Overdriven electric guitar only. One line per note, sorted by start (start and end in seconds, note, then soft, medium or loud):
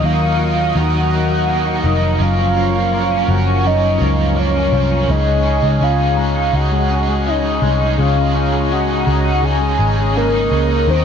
0.02 0.39 D#3 medium
0.02 0.39 F#3 medium
0.02 0.39 D#4 medium
0.02 0.39 F#4 medium
0.02 0.36 A#4 medium
0.37 0.75 F#4 medium
0.37 0.74 A#4 medium
0.42 0.74 D#4 medium
0.73 1.10 F#3 medium
0.73 1.11 D#4 medium
0.73 1.11 F#4 medium
0.78 1.08 A#4 medium
1.10 1.48 F#4 medium
1.10 1.47 A#4 medium
1.14 1.47 D#4 soft
1.46 1.83 D#3 medium
1.46 1.84 F#3 medium
1.46 1.84 D#4 loud
1.46 1.83 F#4 medium
1.46 1.81 A#4 medium
1.82 2.20 F#4 medium
1.82 2.19 A#4 medium
1.86 2.19 D#4 soft
2.18 2.55 F#3 medium
2.18 2.56 C#4 loud
2.18 2.55 F4 medium
2.18 2.53 A#4 medium
2.54 2.91 F4 medium
2.54 2.91 A#4 medium
2.58 2.90 C#4 medium
2.90 3.27 F#3 medium
2.90 3.28 C#4 medium
2.90 3.28 F4 medium
2.90 3.25 A#4 medium
3.26 3.63 A#4 medium
3.31 3.63 C#4 medium
3.63 4.00 F#3 medium
3.63 4.00 C#4 medium
3.63 4.00 F4 medium
3.67 3.98 A#4 medium
3.99 4.36 F4 medium
3.99 4.36 A#4 medium
4.03 4.35 C#4 soft
4.35 4.72 F#3 medium
4.35 4.72 C#4 medium
4.35 4.72 F4 medium
4.35 4.70 A#4 medium
4.71 5.09 F4 soft
4.71 5.08 A#4 medium
4.75 5.08 C#4 soft
5.07 5.44 C#3 medium
5.07 5.45 G#3 medium
5.07 5.45 C#4 medium
5.07 5.45 D#4 medium
5.07 5.42 G#4 medium
5.44 5.81 D#4 soft
5.44 5.81 G#4 medium
5.48 5.81 C#4 soft
5.80 6.17 C#3 medium
5.80 6.17 G#3 medium
5.80 6.18 C#4 medium
5.80 6.17 D#4 medium
5.80 6.15 G#4 loud
6.16 6.54 D#4 soft
6.16 6.53 G#4 medium
6.20 6.52 C#4 soft
6.52 6.89 G#3 medium
6.52 6.90 C#4 medium
6.52 6.90 D#4 medium
6.56 6.87 G#4 medium
6.89 7.27 D#4 soft
6.89 7.25 G#4 medium
6.93 7.26 C#4 soft
7.25 7.62 C#3 medium
7.25 7.62 G#3 medium
7.25 7.62 C#4 medium
7.25 7.62 D#4 loud
7.25 7.59 G#4 loud
7.60 7.98 D#4 medium
7.60 7.97 G#4 medium
7.65 7.98 C#4 soft
7.97 8.34 C#3 medium
7.97 8.34 G#3 medium
7.97 8.35 C#4 medium
7.97 8.34 D#4 medium
7.97 8.32 G#4 medium
8.33 8.71 D#4 medium
8.33 8.70 G#4 medium
8.37 8.70 C#4 soft
8.70 9.06 C#3 medium
8.70 9.07 G#3 loud
8.70 9.07 C#4 medium
8.70 9.07 D#4 medium
8.70 9.04 G#4 medium
9.05 9.43 D#4 medium
9.05 9.42 G#4 medium
9.10 9.42 C#4 soft
9.41 9.78 G#3 medium
9.41 9.79 C#4 medium
9.41 9.80 D#4 medium
9.46 9.77 G#4 medium
9.78 10.16 D#4 medium
9.78 10.15 G#4 medium
9.83 10.15 C#4 medium
10.14 10.51 C#3 medium
10.14 10.51 G#3 medium
10.14 10.52 C#4 medium
10.14 10.51 D#4 loud
10.14 10.49 G#4 loud
10.50 10.87 D#4 medium
10.50 10.87 G#4 medium
10.55 10.87 C#4 soft
10.86 11.05 D#3 medium
10.86 11.05 F#3 medium
10.86 11.05 D#4 medium
10.86 11.05 F#4 medium
10.86 11.05 A#4 medium